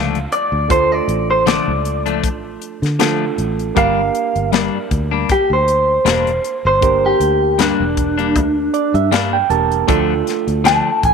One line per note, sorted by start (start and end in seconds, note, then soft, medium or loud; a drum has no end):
0.00 0.26 C#2 medium
0.00 0.18 D3 medium
0.00 0.18 F3 medium
0.00 0.18 A3 medium
0.00 0.65 A3 medium
0.00 0.18 D4 medium
0.00 0.66 D4 medium
0.00 0.66 F4 medium
0.00 0.66 A4 medium
0.00 0.28 F5 medium
0.15 closed hi-hat soft
0.32 0.69 D5 medium
0.32 closed hi-hat medium
0.52 1.00 D2 medium
0.68 2.95 A3 medium
0.68 2.95 D4 medium
0.68 2.95 F4 medium
0.68 2.96 A4 medium
0.68 0.92 C5 medium
0.68 kick loud
0.68 closed hi-hat medium
0.92 1.29 D5 medium
1.08 1.59 A1 medium
1.08 closed hi-hat medium
1.31 1.47 C5 medium
1.46 1.71 D3 medium
1.46 1.71 F3 medium
1.46 1.71 A3 medium
1.46 1.71 D4 medium
1.46 2.21 D5 medium
1.46 snare loud
1.46 closed hi-hat medium
1.68 2.23 C#2 medium
1.85 closed hi-hat medium
2.06 2.28 F3 soft
2.06 2.28 A3 soft
2.06 2.27 D4 soft
2.06 closed hi-hat soft
2.23 2.56 A1 medium
2.23 kick medium
2.23 closed hi-hat medium
2.62 closed hi-hat medium
2.82 3.30 D3 medium
2.82 snare soft
2.82 closed hi-hat soft
2.99 3.24 D3 medium
2.99 3.24 F3 medium
2.99 3.76 A3 soft
2.99 3.25 A3 medium
2.99 3.74 D4 soft
2.99 3.25 D4 medium
2.99 3.76 F4 soft
2.99 3.76 A4 medium
2.99 snare loud
2.99 closed hi-hat medium
3.38 3.71 A1 medium
3.38 closed hi-hat medium
3.59 closed hi-hat soft
3.75 4.09 G1 medium
3.75 4.00 G2 medium
3.75 4.01 G3 medium
3.75 6.77 A#3 medium
3.75 4.01 A#3 medium
3.75 6.78 D4 medium
3.75 4.01 D4 medium
3.75 6.78 G4 soft
3.75 6.78 A#4 medium
3.75 4.54 F5 medium
3.75 kick loud
3.75 closed hi-hat medium
4.15 closed hi-hat medium
4.36 4.68 G1 medium
4.36 closed hi-hat soft
4.52 4.77 G2 medium
4.52 4.77 G3 medium
4.52 4.78 A#3 medium
4.52 4.78 D4 medium
4.52 5.28 D5 medium
4.52 snare loud
4.52 closed hi-hat medium
4.91 5.24 D2 medium
4.91 kick medium
4.91 closed hi-hat medium
5.11 5.34 G3 soft
5.11 5.33 A#3 soft
5.11 5.33 D4 soft
5.29 5.51 G4 medium
5.29 kick medium
5.29 closed hi-hat medium
5.50 5.98 D2 medium
5.50 6.63 C5 medium
5.68 closed hi-hat medium
6.05 6.38 E1 medium
6.05 6.30 G2 medium
6.05 6.30 G3 medium
6.05 6.30 A#3 medium
6.05 6.31 D4 medium
6.05 snare loud
6.05 closed hi-hat medium
6.27 closed hi-hat soft
6.44 closed hi-hat medium
6.65 7.12 G1 medium
6.65 7.03 C5 medium
6.81 9.45 A#3 medium
6.81 9.46 D4 medium
6.81 9.46 G4 medium
6.81 9.46 A#4 medium
6.81 kick loud
6.81 closed hi-hat medium
7.06 7.58 G4 medium
7.20 7.71 D2 medium
7.20 closed hi-hat medium
7.59 7.83 G2 medium
7.59 7.83 G3 medium
7.59 7.84 A#3 medium
7.59 7.84 D4 medium
7.59 9.09 D4 medium
7.59 snare medium
7.59 closed hi-hat medium
7.80 8.36 E1 medium
7.97 kick medium
7.97 closed hi-hat medium
8.18 8.40 G3 soft
8.18 8.40 A#3 soft
8.18 8.39 D4 medium
8.18 closed hi-hat soft
8.36 8.68 D2 medium
8.36 kick medium
8.36 closed hi-hat medium
8.74 8.93 D5 medium
8.74 closed hi-hat medium
8.94 9.42 G2 medium
8.94 9.11 E5 medium
8.94 closed hi-hat soft
9.12 9.36 G2 medium
9.12 9.37 G3 medium
9.12 9.37 A#3 medium
9.12 9.37 D4 medium
9.12 9.31 F5 medium
9.12 snare loud
9.12 closed hi-hat medium
9.33 9.49 G5 medium
9.49 9.83 E1 medium
9.49 9.88 A#3 medium
9.49 9.87 D4 soft
9.49 9.88 G4 soft
9.49 9.89 A#4 medium
9.49 9.86 A5 medium
9.49 closed hi-hat medium
9.71 closed hi-hat soft
9.87 10.21 D2 medium
9.87 10.13 D3 medium
9.87 10.13 F3 medium
9.87 11.14 A3 medium
9.87 10.13 A3 medium
9.87 11.14 D4 medium
9.87 10.13 D4 medium
9.87 11.14 F4 medium
9.87 11.14 A4 medium
9.87 kick loud
9.87 closed hi-hat medium
10.27 snare soft
10.27 closed hi-hat medium
10.47 10.80 D2 medium
10.47 closed hi-hat soft
10.64 10.89 D3 medium
10.64 10.89 F3 medium
10.64 10.90 A3 medium
10.64 10.90 D4 medium
10.64 11.03 A5 loud
10.64 snare loud
10.64 closed hi-hat medium
11.03 11.14 A1 medium
11.03 11.14 G#5 medium
11.03 kick medium
11.03 closed hi-hat medium